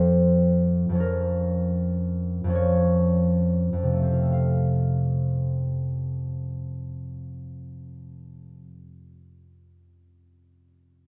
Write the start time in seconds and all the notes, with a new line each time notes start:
Already playing: F2 F3 C4 A4 C5 D5 F5
0.89 F2 F3
0.95 C#4
1.00 A#4
2.44 F2 F3
2.49 C#4 A#4
2.55 C#5
3.73 F2
3.83 C3
3.93 A3
4.03 C4
4.12 F4
4.22 A4
4.32 F5